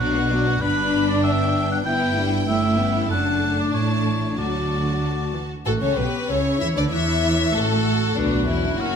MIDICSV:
0, 0, Header, 1, 8, 480
1, 0, Start_track
1, 0, Key_signature, 2, "major"
1, 0, Tempo, 619835
1, 478, Time_signature, 2, 2, 24, 8
1, 2400, Tempo, 641026
1, 4320, Tempo, 625000
1, 6851, End_track
2, 0, Start_track
2, 0, Title_t, "Oboe"
2, 0, Program_c, 0, 68
2, 0, Note_on_c, 0, 66, 79
2, 475, Note_on_c, 0, 71, 84
2, 487, Note_off_c, 0, 66, 0
2, 833, Note_off_c, 0, 71, 0
2, 838, Note_on_c, 0, 74, 76
2, 952, Note_off_c, 0, 74, 0
2, 957, Note_on_c, 0, 76, 84
2, 1309, Note_off_c, 0, 76, 0
2, 1329, Note_on_c, 0, 78, 75
2, 1380, Note_off_c, 0, 78, 0
2, 1441, Note_on_c, 0, 79, 90
2, 1744, Note_off_c, 0, 79, 0
2, 1916, Note_on_c, 0, 76, 85
2, 2371, Note_off_c, 0, 76, 0
2, 2408, Note_on_c, 0, 78, 81
2, 2752, Note_off_c, 0, 78, 0
2, 2774, Note_on_c, 0, 74, 60
2, 2874, Note_off_c, 0, 74, 0
2, 2879, Note_on_c, 0, 73, 66
2, 3349, Note_off_c, 0, 73, 0
2, 3363, Note_on_c, 0, 74, 58
2, 4071, Note_off_c, 0, 74, 0
2, 4323, Note_on_c, 0, 66, 53
2, 4775, Note_off_c, 0, 66, 0
2, 4809, Note_on_c, 0, 64, 47
2, 5296, Note_on_c, 0, 62, 49
2, 5308, Note_off_c, 0, 64, 0
2, 5765, Note_off_c, 0, 62, 0
2, 5770, Note_on_c, 0, 66, 49
2, 6238, Note_off_c, 0, 66, 0
2, 6253, Note_on_c, 0, 66, 53
2, 6729, Note_on_c, 0, 70, 60
2, 6741, Note_off_c, 0, 66, 0
2, 6851, Note_off_c, 0, 70, 0
2, 6851, End_track
3, 0, Start_track
3, 0, Title_t, "Violin section"
3, 0, Program_c, 1, 48
3, 0, Note_on_c, 1, 74, 46
3, 108, Note_off_c, 1, 74, 0
3, 115, Note_on_c, 1, 78, 49
3, 236, Note_on_c, 1, 74, 48
3, 237, Note_off_c, 1, 78, 0
3, 357, Note_off_c, 1, 74, 0
3, 360, Note_on_c, 1, 78, 49
3, 477, Note_on_c, 1, 83, 58
3, 478, Note_off_c, 1, 78, 0
3, 925, Note_off_c, 1, 83, 0
3, 954, Note_on_c, 1, 79, 55
3, 1425, Note_off_c, 1, 79, 0
3, 1435, Note_on_c, 1, 79, 67
3, 2382, Note_off_c, 1, 79, 0
3, 2402, Note_on_c, 1, 81, 53
3, 2863, Note_off_c, 1, 81, 0
3, 2872, Note_on_c, 1, 81, 45
3, 3345, Note_off_c, 1, 81, 0
3, 3356, Note_on_c, 1, 81, 39
3, 4153, Note_off_c, 1, 81, 0
3, 4315, Note_on_c, 1, 66, 55
3, 4365, Note_off_c, 1, 66, 0
3, 4436, Note_on_c, 1, 69, 47
3, 4551, Note_on_c, 1, 67, 49
3, 4557, Note_off_c, 1, 69, 0
3, 4799, Note_off_c, 1, 67, 0
3, 4801, Note_on_c, 1, 69, 45
3, 4862, Note_off_c, 1, 69, 0
3, 5044, Note_on_c, 1, 73, 50
3, 5162, Note_off_c, 1, 73, 0
3, 5165, Note_on_c, 1, 71, 52
3, 5278, Note_on_c, 1, 73, 56
3, 5285, Note_off_c, 1, 71, 0
3, 5753, Note_off_c, 1, 73, 0
3, 5768, Note_on_c, 1, 66, 52
3, 6245, Note_on_c, 1, 59, 53
3, 6246, Note_off_c, 1, 66, 0
3, 6480, Note_off_c, 1, 59, 0
3, 6482, Note_on_c, 1, 61, 56
3, 6710, Note_off_c, 1, 61, 0
3, 6719, Note_on_c, 1, 61, 53
3, 6851, Note_off_c, 1, 61, 0
3, 6851, End_track
4, 0, Start_track
4, 0, Title_t, "Violin section"
4, 0, Program_c, 2, 48
4, 0, Note_on_c, 2, 62, 52
4, 106, Note_off_c, 2, 62, 0
4, 112, Note_on_c, 2, 66, 47
4, 235, Note_off_c, 2, 66, 0
4, 238, Note_on_c, 2, 62, 51
4, 358, Note_off_c, 2, 62, 0
4, 360, Note_on_c, 2, 66, 49
4, 477, Note_on_c, 2, 62, 64
4, 479, Note_off_c, 2, 66, 0
4, 1404, Note_off_c, 2, 62, 0
4, 1434, Note_on_c, 2, 64, 62
4, 1906, Note_off_c, 2, 64, 0
4, 1925, Note_on_c, 2, 64, 55
4, 2397, Note_off_c, 2, 64, 0
4, 2408, Note_on_c, 2, 62, 55
4, 3359, Note_off_c, 2, 62, 0
4, 3361, Note_on_c, 2, 66, 45
4, 4171, Note_off_c, 2, 66, 0
4, 4320, Note_on_c, 2, 69, 66
4, 4369, Note_off_c, 2, 69, 0
4, 4444, Note_on_c, 2, 73, 51
4, 4561, Note_on_c, 2, 71, 58
4, 4562, Note_off_c, 2, 73, 0
4, 4804, Note_off_c, 2, 71, 0
4, 4804, Note_on_c, 2, 73, 64
4, 5045, Note_off_c, 2, 73, 0
4, 5046, Note_on_c, 2, 76, 59
4, 5094, Note_off_c, 2, 76, 0
4, 5172, Note_on_c, 2, 74, 58
4, 5219, Note_off_c, 2, 74, 0
4, 5281, Note_on_c, 2, 76, 67
4, 5754, Note_off_c, 2, 76, 0
4, 5767, Note_on_c, 2, 69, 66
4, 6240, Note_on_c, 2, 62, 68
4, 6246, Note_off_c, 2, 69, 0
4, 6479, Note_on_c, 2, 64, 59
4, 6482, Note_off_c, 2, 62, 0
4, 6716, Note_off_c, 2, 64, 0
4, 6728, Note_on_c, 2, 66, 66
4, 6851, Note_off_c, 2, 66, 0
4, 6851, End_track
5, 0, Start_track
5, 0, Title_t, "French horn section"
5, 0, Program_c, 3, 60
5, 0, Note_on_c, 3, 59, 56
5, 0, Note_on_c, 3, 62, 55
5, 465, Note_off_c, 3, 59, 0
5, 467, Note_off_c, 3, 62, 0
5, 485, Note_on_c, 3, 59, 58
5, 485, Note_on_c, 3, 62, 58
5, 1420, Note_off_c, 3, 59, 0
5, 1420, Note_off_c, 3, 62, 0
5, 1440, Note_on_c, 3, 59, 63
5, 1441, Note_on_c, 3, 64, 53
5, 1548, Note_off_c, 3, 64, 0
5, 1675, Note_on_c, 3, 62, 55
5, 1909, Note_off_c, 3, 59, 0
5, 1911, Note_off_c, 3, 62, 0
5, 1923, Note_on_c, 3, 61, 57
5, 1926, Note_on_c, 3, 57, 55
5, 2398, Note_off_c, 3, 57, 0
5, 2405, Note_off_c, 3, 61, 0
5, 2407, Note_on_c, 3, 57, 55
5, 2410, Note_on_c, 3, 62, 59
5, 2848, Note_off_c, 3, 57, 0
5, 2849, Note_off_c, 3, 62, 0
5, 2872, Note_on_c, 3, 57, 43
5, 2873, Note_on_c, 3, 64, 48
5, 3345, Note_off_c, 3, 57, 0
5, 3356, Note_off_c, 3, 64, 0
5, 3363, Note_on_c, 3, 57, 42
5, 3364, Note_on_c, 3, 66, 39
5, 4071, Note_off_c, 3, 57, 0
5, 4072, Note_off_c, 3, 66, 0
5, 4317, Note_on_c, 3, 57, 54
5, 4432, Note_off_c, 3, 57, 0
5, 4441, Note_on_c, 3, 61, 48
5, 4558, Note_on_c, 3, 59, 51
5, 4560, Note_off_c, 3, 61, 0
5, 4796, Note_on_c, 3, 61, 53
5, 4797, Note_off_c, 3, 59, 0
5, 5031, Note_on_c, 3, 64, 50
5, 5041, Note_off_c, 3, 61, 0
5, 5151, Note_on_c, 3, 62, 51
5, 5158, Note_off_c, 3, 64, 0
5, 5209, Note_off_c, 3, 62, 0
5, 5283, Note_on_c, 3, 64, 60
5, 5755, Note_off_c, 3, 64, 0
5, 5756, Note_on_c, 3, 57, 52
5, 6231, Note_off_c, 3, 57, 0
5, 6234, Note_on_c, 3, 66, 43
5, 6240, Note_on_c, 3, 59, 48
5, 6687, Note_off_c, 3, 66, 0
5, 6690, Note_off_c, 3, 59, 0
5, 6727, Note_on_c, 3, 58, 52
5, 6729, Note_on_c, 3, 66, 51
5, 6851, Note_off_c, 3, 58, 0
5, 6851, Note_off_c, 3, 66, 0
5, 6851, End_track
6, 0, Start_track
6, 0, Title_t, "Viola section"
6, 0, Program_c, 4, 48
6, 6, Note_on_c, 4, 54, 51
6, 114, Note_off_c, 4, 54, 0
6, 119, Note_on_c, 4, 59, 46
6, 239, Note_off_c, 4, 59, 0
6, 246, Note_on_c, 4, 54, 53
6, 362, Note_off_c, 4, 54, 0
6, 371, Note_on_c, 4, 59, 47
6, 484, Note_off_c, 4, 59, 0
6, 486, Note_on_c, 4, 62, 50
6, 1409, Note_off_c, 4, 62, 0
6, 1439, Note_on_c, 4, 59, 58
6, 1673, Note_off_c, 4, 59, 0
6, 1682, Note_on_c, 4, 55, 64
6, 1918, Note_on_c, 4, 57, 56
6, 1919, Note_off_c, 4, 55, 0
6, 2154, Note_off_c, 4, 57, 0
6, 2155, Note_on_c, 4, 59, 59
6, 2400, Note_off_c, 4, 59, 0
6, 2403, Note_on_c, 4, 57, 49
6, 2860, Note_off_c, 4, 57, 0
6, 2869, Note_on_c, 4, 57, 47
6, 3344, Note_off_c, 4, 57, 0
6, 3353, Note_on_c, 4, 54, 35
6, 3782, Note_off_c, 4, 54, 0
6, 3834, Note_on_c, 4, 54, 42
6, 3893, Note_off_c, 4, 54, 0
6, 4076, Note_on_c, 4, 52, 39
6, 4136, Note_off_c, 4, 52, 0
6, 4317, Note_on_c, 4, 57, 48
6, 4366, Note_off_c, 4, 57, 0
6, 4440, Note_on_c, 4, 61, 47
6, 4555, Note_on_c, 4, 59, 54
6, 4560, Note_off_c, 4, 61, 0
6, 4801, Note_off_c, 4, 59, 0
6, 4809, Note_on_c, 4, 61, 56
6, 5048, Note_off_c, 4, 61, 0
6, 5050, Note_on_c, 4, 64, 54
6, 5168, Note_off_c, 4, 64, 0
6, 5170, Note_on_c, 4, 62, 49
6, 5217, Note_off_c, 4, 62, 0
6, 5286, Note_on_c, 4, 64, 51
6, 5756, Note_off_c, 4, 64, 0
6, 5770, Note_on_c, 4, 57, 55
6, 6238, Note_off_c, 4, 57, 0
6, 6251, Note_on_c, 4, 50, 39
6, 6251, Note_on_c, 4, 59, 40
6, 6359, Note_off_c, 4, 50, 0
6, 6360, Note_off_c, 4, 59, 0
6, 6368, Note_on_c, 4, 62, 38
6, 6369, Note_on_c, 4, 54, 39
6, 6482, Note_on_c, 4, 50, 44
6, 6486, Note_off_c, 4, 54, 0
6, 6486, Note_off_c, 4, 62, 0
6, 6486, Note_on_c, 4, 59, 43
6, 6601, Note_on_c, 4, 54, 43
6, 6603, Note_off_c, 4, 50, 0
6, 6605, Note_off_c, 4, 59, 0
6, 6605, Note_on_c, 4, 62, 41
6, 6721, Note_off_c, 4, 54, 0
6, 6724, Note_off_c, 4, 62, 0
6, 6725, Note_on_c, 4, 61, 44
6, 6726, Note_on_c, 4, 64, 44
6, 6835, Note_off_c, 4, 61, 0
6, 6835, Note_off_c, 4, 64, 0
6, 6851, End_track
7, 0, Start_track
7, 0, Title_t, "Cello section"
7, 0, Program_c, 5, 48
7, 1, Note_on_c, 5, 47, 68
7, 422, Note_off_c, 5, 47, 0
7, 476, Note_on_c, 5, 43, 64
7, 1404, Note_off_c, 5, 43, 0
7, 1432, Note_on_c, 5, 43, 59
7, 1905, Note_off_c, 5, 43, 0
7, 1918, Note_on_c, 5, 43, 68
7, 2393, Note_off_c, 5, 43, 0
7, 2405, Note_on_c, 5, 42, 58
7, 2875, Note_on_c, 5, 45, 55
7, 2877, Note_off_c, 5, 42, 0
7, 3347, Note_off_c, 5, 45, 0
7, 3357, Note_on_c, 5, 50, 45
7, 4169, Note_off_c, 5, 50, 0
7, 4322, Note_on_c, 5, 45, 56
7, 4370, Note_off_c, 5, 45, 0
7, 4439, Note_on_c, 5, 49, 47
7, 4488, Note_off_c, 5, 49, 0
7, 4569, Note_on_c, 5, 47, 49
7, 4630, Note_off_c, 5, 47, 0
7, 4807, Note_on_c, 5, 49, 55
7, 5042, Note_off_c, 5, 49, 0
7, 5047, Note_on_c, 5, 52, 52
7, 5094, Note_off_c, 5, 52, 0
7, 5170, Note_on_c, 5, 50, 51
7, 5285, Note_off_c, 5, 50, 0
7, 5288, Note_on_c, 5, 52, 56
7, 5767, Note_off_c, 5, 52, 0
7, 5767, Note_on_c, 5, 45, 56
7, 6243, Note_on_c, 5, 38, 49
7, 6246, Note_off_c, 5, 45, 0
7, 6479, Note_off_c, 5, 38, 0
7, 6482, Note_on_c, 5, 40, 50
7, 6717, Note_on_c, 5, 42, 59
7, 6722, Note_off_c, 5, 40, 0
7, 6851, Note_off_c, 5, 42, 0
7, 6851, End_track
8, 0, Start_track
8, 0, Title_t, "Double bass section"
8, 0, Program_c, 6, 48
8, 4, Note_on_c, 6, 35, 65
8, 423, Note_off_c, 6, 35, 0
8, 482, Note_on_c, 6, 31, 61
8, 1407, Note_off_c, 6, 31, 0
8, 1436, Note_on_c, 6, 31, 58
8, 1907, Note_off_c, 6, 31, 0
8, 1918, Note_on_c, 6, 31, 60
8, 2393, Note_off_c, 6, 31, 0
8, 2407, Note_on_c, 6, 30, 53
8, 2877, Note_off_c, 6, 30, 0
8, 2883, Note_on_c, 6, 33, 49
8, 3351, Note_off_c, 6, 33, 0
8, 3364, Note_on_c, 6, 38, 40
8, 4173, Note_off_c, 6, 38, 0
8, 4321, Note_on_c, 6, 33, 55
8, 4434, Note_off_c, 6, 33, 0
8, 4443, Note_on_c, 6, 37, 48
8, 4491, Note_off_c, 6, 37, 0
8, 4561, Note_on_c, 6, 35, 48
8, 4623, Note_off_c, 6, 35, 0
8, 4805, Note_on_c, 6, 37, 55
8, 5041, Note_off_c, 6, 37, 0
8, 5049, Note_on_c, 6, 40, 54
8, 5096, Note_off_c, 6, 40, 0
8, 5167, Note_on_c, 6, 38, 52
8, 5284, Note_off_c, 6, 38, 0
8, 5287, Note_on_c, 6, 40, 55
8, 5757, Note_off_c, 6, 40, 0
8, 5770, Note_on_c, 6, 33, 52
8, 6238, Note_off_c, 6, 33, 0
8, 6250, Note_on_c, 6, 35, 49
8, 6669, Note_off_c, 6, 35, 0
8, 6729, Note_on_c, 6, 30, 53
8, 6851, Note_off_c, 6, 30, 0
8, 6851, End_track
0, 0, End_of_file